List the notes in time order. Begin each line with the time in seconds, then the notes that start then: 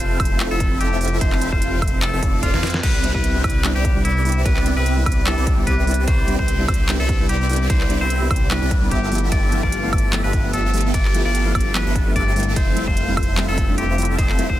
Already playing: F1 C4 E4 F4 A4 C5 F5
0.20 F1 C4 F4 A4 C5, kick, closed hi-hat, high woodblock
0.25 closed hi-hat
0.40 clap, closed hi-hat
0.51 F1 C4 E4 F4 A4 E5
0.60 kick, closed hi-hat
0.81 F1 C4 E4 F4 G4 A4 E5, closed hi-hat
1.01 closed hi-hat, open hi-hat
1.08 closed hi-hat
1.21 F1 C4 E4 F4 A4 C5 E5, kick, closed hi-hat
1.32 clap
1.42 closed hi-hat
1.52 F1 C4 E4 F4 A4 C5 F5, kick
1.62 closed hi-hat
1.82 F1 E4 F4 C5 E5, kick, closed hi-hat, high woodblock
1.88 closed hi-hat
2.02 A4, clap, closed hi-hat
2.13 F1 C4 E4 F4 A4 E5
2.23 F1 C4 F4 A4 D5, kick, closed hi-hat
2.43 F4, kick, closed hi-hat
2.54 F2 C4 E4 F4 A4 D5, snare
2.63 snare, closed hi-hat, open hi-hat
2.70 closed hi-hat
2.74 snare
2.83 C2 C4 E4 G4 B4 D5, kick, closed hi-hat, crash, ride
3.03 G3 B3 D4 E4, closed hi-hat
3.15 C2 C4 E4 G4 B4 E5, kick
3.24 closed hi-hat
3.34 G3 B3 D4 E4
3.44 C2 C4 E4 G4 B4 D5, kick, closed hi-hat, high woodblock
3.50 closed hi-hat
3.63 G3 B3 D4 E4, clap, closed hi-hat, ride
3.75 C2 C4 E4 G4 B4 D5
3.85 kick, closed hi-hat
3.95 G3 B3 D4 E4
4.05 C2 C4 E4 G4 B4 D5, closed hi-hat
4.24 G3 B3 D4 E4, open hi-hat
4.29 closed hi-hat
4.32 closed hi-hat
4.45 C2 C4 E4 G4 B4 D5, kick, closed hi-hat, ride
4.57 clap
4.65 G3 B3 D4 E4, closed hi-hat
4.77 C2 C4 E4 G4 B4 E5
4.86 closed hi-hat
4.96 G3 B3 D4 E4
5.06 C2 C4 E4 G4 B4 D5, kick, closed hi-hat, high woodblock
5.12 closed hi-hat
5.26 G3 B3 D4 E4 A4, clap, closed hi-hat, ride
5.38 C2 C4 E4 G4 B4 D5
5.47 kick, closed hi-hat
5.57 G3 B3 D4 E4
5.67 C2 C4 E4 G4 B4 D5, kick, closed hi-hat
5.86 G3 B3 D4 E4, open hi-hat
5.91 closed hi-hat
5.94 closed hi-hat
6.07 C2 C4 E4 G4 B4 C5 D5, kick, closed hi-hat, ride
6.27 G3 B3 D4 E4, closed hi-hat
6.39 C2 C5, kick
6.48 closed hi-hat
6.58 G3 B3 D4 E4
6.68 C2 C4 G4 B4 C5 D5, kick, closed hi-hat, high woodblock
6.74 closed hi-hat
6.88 G3 B3 D4 E4, clap, closed hi-hat, ride
7.00 C2 C4 E4 G4 A4 B4 D5
7.09 kick, closed hi-hat
7.19 G3 B3 D4 E4
7.29 C2 C4 E4 G4 B4 D5, closed hi-hat
7.49 G3 B3 D4 E4, open hi-hat
7.53 closed hi-hat
7.56 closed hi-hat
7.70 C2 C4 E4 G4 B4 C5, kick, closed hi-hat, ride
7.81 clap
7.89 G3 B3 D4 E4, closed hi-hat
8.01 C2 C4 E4 G4 B4 C5 E5
8.10 closed hi-hat
8.20 G3 B3 D4 E4
8.30 C2 C4 E4 G4 B4 C5 D5, kick, closed hi-hat, high woodblock
8.36 closed hi-hat
8.50 G3 B3 D4 E4 B4, clap, closed hi-hat, ride
8.62 C2 C4 E4 G4 B4 D5
8.71 kick, closed hi-hat
8.81 G3 B3 D4 E4
8.91 G1 B3 F4 G4 A4 E5, kick, closed hi-hat
9.11 F3 A3 B3 E4, open hi-hat
9.15 closed hi-hat
9.18 closed hi-hat
9.32 G1 B3 F4 G4 A4 D5 E5, kick, closed hi-hat, ride
9.51 F3 A3 B3 E4, closed hi-hat
9.63 G1 B3 F4 G4 A4 D5 F5, kick
9.72 closed hi-hat
9.83 F3 A3 B3 E4
9.93 G1 F4 G4 A4 D5, kick, closed hi-hat, high woodblock
9.98 closed hi-hat
10.12 F3 A3 B3 E4, clap, closed hi-hat, ride
10.24 G1 B3 F4 G4 A4 B4 E5
10.33 kick, closed hi-hat
10.43 F3 A3 B3 D4
10.53 G1 B3 F4 G4 A4 E5, closed hi-hat
10.73 F3 A3 B3 E4, open hi-hat
10.78 closed hi-hat
10.81 closed hi-hat
10.94 G1 F4 A4 D5 E5, kick, closed hi-hat, ride
11.05 clap
11.13 F3 A3 B3 E4, closed hi-hat
11.25 G1 B3 F4 G4 A4 D5 F5
11.35 closed hi-hat
11.45 F3 A3 B3 E4
11.55 G1 B3 A4 D5 E5, kick, closed hi-hat, high woodblock
11.61 closed hi-hat
11.74 F3 A3 B3 E4 B4, clap, closed hi-hat, ride
11.86 G1 B3 F4 G4 A4 E5
11.96 kick, closed hi-hat
12.06 F3 A3 B3 D4
12.16 G1 B3 F4 G4 A4 D5 E5, kick, closed hi-hat
12.35 G3 A3 C4 E4, open hi-hat
12.40 closed hi-hat
12.43 closed hi-hat
12.56 F1 C4 E4 F4 C5 E5, kick, closed hi-hat, ride
12.76 G3 A3 C4 E4, closed hi-hat
12.88 F1 C4 E4 F4 A4 C5 F5, kick
12.97 closed hi-hat
13.07 G3 A3 C4 E4
13.17 F1 C4 E4 F4 A4 C5, kick, closed hi-hat, high woodblock
13.23 closed hi-hat
13.36 G3 A3 C4 E4, clap, closed hi-hat, ride
13.48 F1 C4 E4 F4 A4 E5
13.58 kick, closed hi-hat
13.68 G3 A3 C4 D4
13.78 F1 C4 E4 F4 G4 A4 E5, closed hi-hat
13.97 G3 A3 C4 E4, open hi-hat
14.02 closed hi-hat
14.05 closed hi-hat
14.18 F1 C4 E4 F4 A4 C5 E5, kick, closed hi-hat, ride
14.29 clap
14.38 G3 A3 C4 E4, closed hi-hat
14.50 F1 C4 E4 F4 A4 C5, kick